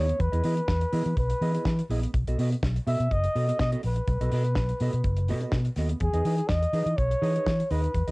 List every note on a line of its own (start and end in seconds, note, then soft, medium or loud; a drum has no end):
0.00 0.11 D#2 medium
0.00 0.16 B3 medium
0.00 0.23 C#5 loud
0.08 muted clean electric guitar stroke medium
0.08 closed hi-hat soft
0.19 0.28 E2 loud
0.19 1.18 B4 medium
0.19 muted clean electric guitar stroke soft
0.19 kick medium
0.19 closed hi-hat medium
0.32 0.40 E2 medium
0.32 0.43 B3 medium
0.32 0.43 E4 medium
0.32 0.44 G#4 medium
0.32 0.44 D#5 medium
0.32 closed hi-hat soft
0.44 0.60 E3 loud
0.44 0.60 B3 medium
0.44 0.57 E4 medium
0.44 0.57 G#4 medium
0.44 0.56 D#5 medium
0.44 open hi-hat medium
0.57 muted clean electric guitar stroke soft
0.57 closed hi-hat soft
0.68 0.84 E2 medium
0.68 muted clean electric guitar stroke soft
0.68 kick loud
0.68 snare loud
0.81 muted clean electric guitar stroke soft
0.81 closed hi-hat soft
0.92 1.01 E3 medium
0.92 1.12 B3 medium
0.92 1.05 E4 medium
0.92 1.05 G#4 medium
0.92 1.04 D#5 medium
0.92 open hi-hat medium
1.06 1.13 E3 medium
1.06 muted clean electric guitar stroke soft
1.06 closed hi-hat soft
1.17 1.32 B1 medium
1.17 1.86 B4 medium
1.17 muted clean electric guitar stroke soft
1.17 kick loud
1.17 closed hi-hat medium
1.30 muted clean electric guitar stroke soft
1.30 closed hi-hat soft
1.41 1.57 E3 medium
1.41 1.54 B3 medium
1.41 1.53 E4 medium
1.41 1.53 G#4 medium
1.41 1.53 D#5 loud
1.41 open hi-hat medium
1.54 1.69 B3 soft
1.54 1.69 E4 soft
1.54 1.69 G#4 medium
1.54 1.69 D#5 medium
1.54 closed hi-hat medium
1.65 1.81 E3 loud
1.65 kick loud
1.65 snare loud
1.79 muted clean electric guitar stroke soft
1.79 closed hi-hat soft
1.89 2.05 A#1 medium
1.89 2.10 B3 medium
1.89 2.02 E4 medium
1.89 2.02 G#4 loud
1.89 2.01 D#5 medium
1.89 open hi-hat medium
2.02 muted clean electric guitar stroke medium
2.02 closed hi-hat medium
2.13 2.22 B1 loud
2.13 muted clean electric guitar stroke soft
2.13 kick loud
2.13 closed hi-hat medium
2.27 2.34 B1 medium
2.27 2.38 B3 soft
2.27 2.39 F#4 medium
2.27 2.39 A4 medium
2.27 2.39 D#5 medium
2.27 closed hi-hat medium
2.38 2.53 B2 medium
2.38 2.54 B3 medium
2.38 2.52 F#4 medium
2.38 2.51 A4 medium
2.38 2.51 D#5 medium
2.38 open hi-hat medium
2.52 muted clean electric guitar stroke soft
2.52 closed hi-hat soft
2.63 2.78 B1 loud
2.63 muted clean electric guitar stroke soft
2.63 kick loud
2.63 snare loud
2.76 muted clean electric guitar stroke soft
2.76 closed hi-hat soft
2.87 2.95 B2 medium
2.87 3.06 B3 medium
2.87 3.00 F#4 medium
2.87 3.00 A4 medium
2.87 2.99 D#5 medium
2.87 3.14 E5 loud
2.87 open hi-hat medium
3.00 3.07 B2 medium
3.00 muted clean electric guitar stroke soft
3.00 closed hi-hat soft
3.11 3.26 F#1 medium
3.11 3.60 D#5 loud
3.11 muted clean electric guitar stroke soft
3.11 kick loud
3.11 closed hi-hat soft
3.24 muted clean electric guitar stroke soft
3.24 closed hi-hat soft
3.35 3.51 B2 medium
3.35 3.48 B3 medium
3.35 3.48 F#4 medium
3.35 3.47 A4 loud
3.35 3.47 D#5 loud
3.35 open hi-hat medium
3.48 3.58 B3 soft
3.48 3.58 F#4 medium
3.48 3.59 A4 medium
3.48 3.59 D#5 medium
3.48 closed hi-hat medium
3.59 3.74 B2 loud
3.59 3.71 D#5 loud
3.59 muted clean electric guitar stroke soft
3.59 kick loud
3.59 snare loud
3.72 3.82 B3 medium
3.72 3.82 F#4 medium
3.72 3.82 A4 medium
3.72 3.83 D#5 medium
3.72 closed hi-hat medium
3.83 3.99 A#1 medium
3.83 5.74 B4 medium
3.83 muted clean electric guitar stroke soft
3.83 open hi-hat medium
3.96 muted clean electric guitar stroke soft
3.96 closed hi-hat soft
4.07 4.16 B1 medium
4.07 muted clean electric guitar stroke soft
4.07 kick medium
4.07 closed hi-hat medium
4.21 4.28 B1 medium
4.21 4.31 B3 medium
4.21 4.32 F#4 medium
4.21 4.32 A4 medium
4.21 4.33 D#5 medium
4.21 closed hi-hat medium
4.32 4.58 B2 medium
4.32 4.48 B3 medium
4.32 4.45 F#4 medium
4.32 4.45 A4 medium
4.32 4.45 D#5 medium
4.32 open hi-hat medium
4.45 muted clean electric guitar stroke soft
4.45 closed hi-hat soft
4.55 4.71 B1 medium
4.55 muted clean electric guitar stroke soft
4.55 kick loud
4.55 snare loud
4.69 muted clean electric guitar stroke soft
4.69 closed hi-hat soft
4.80 4.89 B2 loud
4.80 5.00 B3 medium
4.80 4.94 F#4 medium
4.80 4.93 A4 loud
4.80 4.93 D#5 medium
4.80 open hi-hat medium
4.93 5.00 B2 medium
4.93 muted clean electric guitar stroke soft
4.93 closed hi-hat soft
5.04 5.31 F#1 loud
5.04 muted clean electric guitar stroke soft
5.04 kick loud
5.04 closed hi-hat medium
5.17 muted clean electric guitar stroke soft
5.17 closed hi-hat soft
5.29 5.44 B2 medium
5.29 5.42 B3 medium
5.29 5.42 F#4 medium
5.29 5.42 A4 medium
5.29 5.41 D#5 medium
5.29 open hi-hat medium
5.41 5.57 B3 soft
5.41 5.57 F#4 soft
5.41 5.57 A4 medium
5.41 5.57 D#5 medium
5.41 closed hi-hat soft
5.52 5.68 B2 loud
5.52 kick loud
5.52 snare loud
5.65 muted clean electric guitar stroke soft
5.65 closed hi-hat soft
5.76 5.92 D#2 medium
5.76 5.97 B3 medium
5.76 5.90 F#4 medium
5.76 5.90 A4 medium
5.76 5.90 D#5 medium
5.76 snare soft
5.76 open hi-hat medium
5.89 muted clean electric guitar stroke medium
5.89 closed hi-hat medium
6.00 6.09 E2 medium
6.00 6.50 G#4 medium
6.00 muted clean electric guitar stroke soft
6.00 kick medium
6.00 closed hi-hat medium
6.13 6.21 E2 medium
6.13 6.25 D#4 medium
6.13 6.25 G#4 medium
6.13 6.25 B4 medium
6.13 6.26 D#5 medium
6.13 closed hi-hat soft
6.25 6.40 E3 medium
6.25 6.41 D#4 medium
6.25 6.37 G#4 medium
6.25 6.37 B4 medium
6.25 6.37 D#5 medium
6.25 open hi-hat medium
6.38 muted clean electric guitar stroke soft
6.38 closed hi-hat soft
6.48 6.65 E2 medium
6.48 6.99 D#5 loud
6.48 muted clean electric guitar stroke soft
6.48 kick loud
6.48 snare loud
6.62 muted clean electric guitar stroke soft
6.62 closed hi-hat soft
6.73 6.81 E3 medium
6.73 6.93 D#4 medium
6.73 6.86 G#4 medium
6.73 6.85 B4 loud
6.73 6.85 D#5 medium
6.73 open hi-hat medium
6.86 6.93 E3 medium
6.86 muted clean electric guitar stroke soft
6.86 closed hi-hat soft
6.97 7.13 B1 medium
6.97 7.73 C#5 loud
6.97 muted clean electric guitar stroke soft
6.97 kick medium
6.97 closed hi-hat soft
7.10 muted clean electric guitar stroke soft
7.10 closed hi-hat soft
7.22 7.37 E3 medium
7.22 7.35 D#4 medium
7.22 7.35 G#4 medium
7.22 7.34 B4 medium
7.22 7.33 D#5 medium
7.22 open hi-hat medium
7.35 7.50 B4 medium
7.35 closed hi-hat soft
7.46 7.62 E3 loud
7.46 kick loud
7.46 snare loud
7.59 muted clean electric guitar stroke soft
7.59 closed hi-hat soft
7.71 7.86 D#2 medium
7.71 7.90 D#4 medium
7.71 7.83 G#4 medium
7.71 8.11 B4 medium
7.71 7.83 B4 medium
7.71 7.82 D#5 medium
7.71 open hi-hat medium
7.83 muted clean electric guitar stroke medium
7.83 closed hi-hat soft
7.94 8.03 E2 medium
7.94 muted clean electric guitar stroke soft
7.94 kick medium
7.94 closed hi-hat medium
8.07 8.11 E2 medium
8.07 8.11 D#4 medium
8.07 8.11 G#4 medium
8.07 8.11 B4 medium
8.07 8.11 D#5 medium
8.07 closed hi-hat medium